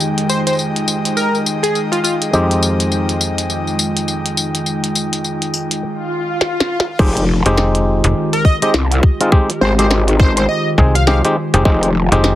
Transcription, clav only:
0.00 2.30 F2 medium
0.00 2.31 G#3 medium
0.00 2.30 C4 medium
0.00 2.30 D#4 medium
0.00 2.30 G4 medium
2.33 5.83 F2 medium
2.33 5.83 G#3 medium
2.33 5.83 C4 medium
2.33 5.83 D#4 medium
2.33 5.83 G4 medium
6.99 7.24 G#3 medium
6.99 7.24 C4 medium
6.99 7.24 D#4 medium
6.99 7.24 G4 loud
7.46 8.58 G#3 loud
7.46 8.58 C4 medium
7.46 8.58 D#4 medium
7.46 8.58 G4 loud
8.62 8.74 G#3 medium
8.62 8.74 C4 medium
8.62 8.74 D#4 medium
8.62 8.74 G4 medium
9.21 9.30 G#3 medium
9.21 9.30 C4 medium
9.21 9.31 D#4 medium
9.21 9.31 F4 medium
9.32 9.50 G#3 medium
9.32 9.50 C4 medium
9.32 9.50 D#4 medium
9.32 9.50 G4 loud
9.79 10.75 G#3 medium
9.79 10.75 C4 medium
9.79 10.75 D#4 medium
9.79 10.75 G4 medium
10.78 10.95 G#3 medium
10.78 10.95 C4 medium
10.78 10.95 D#4 medium
10.78 10.95 G#4 medium
11.07 11.22 G#3 medium
11.07 11.22 C4 medium
11.07 11.22 D#4 medium
11.07 11.22 G4 loud
11.25 11.36 G#3 medium
11.25 11.36 C4 medium
11.25 11.36 D#4 medium
11.25 11.36 G4 medium
11.54 11.64 G#3 medium
11.54 11.64 C4 medium
11.54 11.64 D#4 medium
11.54 11.64 G4 medium
11.65 11.90 G#3 loud
11.65 11.90 C4 medium
11.65 11.90 D#4 medium
11.65 11.90 G4 loud
12.12 12.35 G#3 loud
12.12 12.35 C4 medium
12.12 12.35 D#4 medium
12.12 12.35 G4 loud

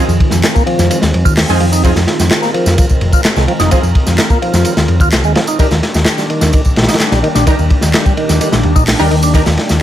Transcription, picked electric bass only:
0.08 0.17 F2 loud
0.32 0.41 F2 medium
0.79 0.87 F2 loud
1.02 1.11 D#2 medium
1.14 1.23 F2 loud
1.25 1.43 D#2 loud
1.49 1.58 F2 medium
1.61 1.91 F2 medium
1.96 2.05 F2 loud
2.19 2.28 F2 medium
2.66 2.75 F2 loud
3.01 3.10 F1 loud
3.37 3.45 C2 loud
3.60 3.68 F1 loud
3.72 muted picked electric bass stroke soft
3.83 3.92 F2 loud
4.07 4.15 F2 medium
4.54 4.62 F2 loud
4.77 4.86 D#2 medium
4.89 4.97 F2 loud
5.00 5.11 D#2 loud
5.12 5.21 C2 loud
5.24 5.32 D#2 medium
5.59 muted picked electric bass stroke soft
5.71 5.80 D#2 loud
5.95 6.03 D#2 medium
6.42 6.50 D#2 loud
6.77 6.85 A#1 loud
7.12 7.20 A#1 loud
7.35 7.44 A#1 loud
7.59 7.67 D#2 loud
7.83 7.91 D#2 medium
8.29 8.38 D#2 loud
8.53 8.61 A#1 loud
8.65 8.73 D#2 loud
8.76 8.93 A#1 loud
9.00 9.08 D#2 medium
9.11 9.41 D#2 medium
9.47 9.55 D#2 loud
9.70 9.78 D#2 medium

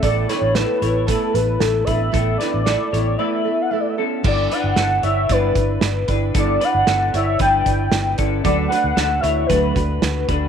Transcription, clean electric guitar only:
0.03 0.29 E4 medium
0.03 0.30 A4 medium
0.30 0.56 D4 medium
0.30 0.56 B4 medium
0.56 0.82 E4 medium
0.56 0.82 A4 medium
0.82 1.09 E4 medium
0.82 1.08 C#5 medium
1.09 1.84 E4 soft
1.09 1.84 B4 medium
1.87 2.14 D4 soft
1.87 2.14 B4 medium
2.14 2.39 E4 medium
2.14 2.40 A4 medium
2.40 2.67 D4 medium
2.40 2.66 B4 medium
2.66 2.92 E4 soft
2.66 2.93 A4 medium
2.93 3.19 E4 medium
2.93 3.19 C#5 medium
3.19 3.95 E4 medium
3.19 3.94 B4 medium
3.98 4.25 C#4 medium
3.98 4.23 A4 medium
4.24 4.51 D4 medium
4.24 4.51 A4 medium
4.52 4.76 D4 medium
4.52 4.78 B4 medium
4.77 5.04 D4 medium
4.77 5.03 A4 medium
5.03 5.30 E4 medium
5.03 5.29 C#5 medium
5.30 6.05 D4 medium
5.30 6.05 B4 medium
6.08 6.34 D4 soft
6.08 6.35 B4 medium
6.34 6.61 D4 medium
6.34 6.61 A4 medium
6.61 6.87 D4 medium
6.61 6.87 B4 medium
6.88 7.14 D4 medium
6.88 7.14 A4 medium
7.14 7.40 E4 medium
7.14 7.39 C#5 medium
7.40 8.15 D4 medium
7.40 8.15 B4 medium
8.18 8.45 C#4 medium
8.18 8.43 A4 medium
8.45 8.70 D4 medium
8.45 8.71 A4 loud
8.70 8.96 D4 medium
8.70 8.97 B4 medium
8.96 9.23 D4 medium
8.96 9.23 A4 medium
9.23 9.49 E4 medium
9.23 9.49 C#5 medium
9.49 10.25 D4 soft
9.49 10.25 B4 medium
10.29 10.48 D4 medium
10.29 10.48 B4 medium

